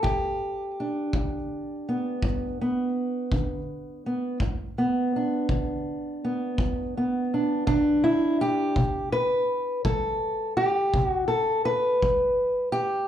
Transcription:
Already playing: B3
0.03 G2 G4, kick
0.80 D4
1.13 D3, kick
1.89 B3
2.23 G2, kick
2.61 B3
3.32 D3, kick
4.06 B3
4.40 G2, kick
4.78 B3
5.16 D4
5.49 D3, kick
6.25 B3
6.58 G2, kick
6.97 B3
7.34 D4
7.67 D3 D4, kick
8.04 E4
8.41 G4
8.76 C3, kick
9.12 B4
9.85 G3 A4, kick
10.57 G4
10.94 C3, kick
11.08 F#4
11.28 A4
11.65 B4
12.02 G3, kick
12.72 G4

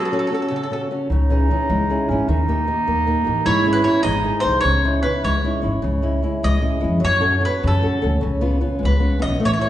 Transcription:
Already playing: F#3 F#4
0.05 A4
0.12 C#4 F#4 A4
0.19 A4
0.27 A4
0.32 C#4 F#4 A4
0.42 A4
0.48 C#3 A4
0.56 A4
0.63 A4
0.71 C#4 F#4 A4
0.91 C#4 F#4 A4
1.09 C#2 C#3 D#4
1.30 E3 C#4 G#4
1.50 E3 C#4 G#4
1.70 C#2 G#3
1.90 C#4 E4 G#4
2.09 G#1 C#4 E4 G#4
2.28 D#2 D#3 D#4
2.48 A#3 D#4 G4
2.67 A#3 D#4 G4
2.88 D#2 A#3
3.07 A#3 D#4 G4
3.24 A1 A#3 D#4 G4
3.45 G#1 G#3 E4 C#5
3.66 C#4 E4 G#4
3.73 B4
3.83 C#4 E4 G#4 C#5
4.03 G#1 G#3 D#4 D#5
4.24 D#4 G#4 C5
4.40 C5
4.44 C2 D#4 G#4 C5
4.61 C#2 C#5
4.65 C#3
4.84 C#4 D#4 E4
5.03 C#4 D#4 E4 B4
5.24 C#2 G#3 C#5
5.44 C#4 D#4 E4
5.62 G#1 C#4 D#4 E4
5.82 C#2 C#3
6.02 G#3 C#4 E4
6.22 G#3 C#4 E4
6.43 C#2 G#3 D#5
6.61 G#3 C#4 E4
6.80 G#3 C#4 E4
6.84 F2
7.00 F#2 F#3
7.05 C#5
7.20 C#4 F#4 A4
7.40 C#4 F#4 A4
7.45 B4
7.63 F#2 C#3
7.67 A4
7.82 C#4 F#4 A4
8.01 D2 C#4 F#4 A4
8.21 C#2 C#3
8.41 B3 C#4 F4
8.61 B3 C#4 F4
8.79 G#3
8.83 C#2 B4
9.00 B3 C#4 F4
9.19 B3 C#4 F4 D#5
9.23 B1
9.40 A1 A3
9.45 C#5
9.53 C#5
9.58 E4 A4 C#5

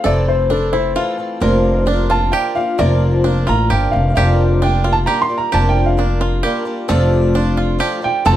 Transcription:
0.04 F1 F2 C3 E3 A3 C4 A4 D5
0.28 C5
0.50 E3 A3 C4 D4 A4
0.73 E3 A3 C4 E4 A4 C5
0.95 E3 A3 C4 F4 A4 F5
1.18 E3 A3 C4 A4
1.40 F1 F2 C3 F3 A#3 D4 F4 A#4
1.86 F3 A#3 D4 F4
2.09 F3 A#3 D4 F4 A5
2.32 F3 A#3 D4 F4 G4 G5
2.55 F3 A#3 D4 F4 F5
2.78 F1 F2 C3 F3 A#3 D4 F4 A#4 D5
3.24 F3 A#3 D4 F4
3.47 A1 F3 A#3 D4 F4 A#5
3.70 G1 F3 A#3 D4 F4 G4 G5
3.91 F1 F5
4.15 F1 F2 D3 G3 A#3 D4 F4 G4 F5
4.62 G3 A#3 D4 F4 G5
4.84 G3 A#3 D4 F4
4.93 A5
5.06 G3 A#3 D4 F4 G4 A#5
5.22 C6
5.28 G3 A#3 D4 F4
5.38 A#5
5.52 F1 F2 D3 G3 A#3 D4 F4 G4 A5
5.69 G5
5.86 F5
5.97 G3 A#3 D4 F4
6.21 F4
6.43 G3 A#3 D4 F4 G4
6.65 G3 A#3 D4 F4
6.88 F1 F2 C3 F3 A3 D4 F4 A4
7.34 F3 A3 D4 F4
7.57 F4
7.79 F3 A3 D4 F4 G4
8.01 F3 A3 D4 F4 G5
8.25 F1 F2 C3 F3 A3 C4 F4 A4 A5

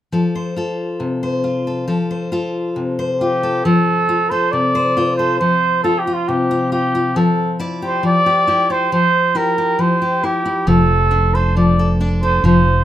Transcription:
0.12 F3 A4
0.35 C5
0.56 F4 A4
1.00 C3
1.23 C5
1.44 F4
1.67 A4
1.88 F3 A4
2.11 C5
2.32 F4 A4
2.76 C3
2.99 C5
3.21 F4 G4
3.43 A4
3.64 F3 A4
4.09 F4
4.30 A4 C5
4.52 C3 D5
4.75 C5
4.97 F4 C5
5.16 A4 C5
5.39 F3 C5
5.83 F4 A4
5.99 G4
6.07 F4
6.14 F4
6.28 C3 G4
6.51 F4
6.72 F4 G4
6.95 F4
7.16 F3 A4
7.59 E4 D5
7.82 G4 C5
8.03 F3 D5
8.26 G4
8.47 E4 G4
8.70 G4 C5
8.92 F3 C5
9.35 E4 G4 A#4
9.58 G4
9.79 F3 C5
10.02 G4
10.24 E4 G4
10.46 E4
10.67 F1 F3 A4
11.11 D4
11.34 A4 C5
11.57 F3 D5
11.79 A4
12.00 D4 D5
12.23 A4 C5
12.44 F1 F3 C5

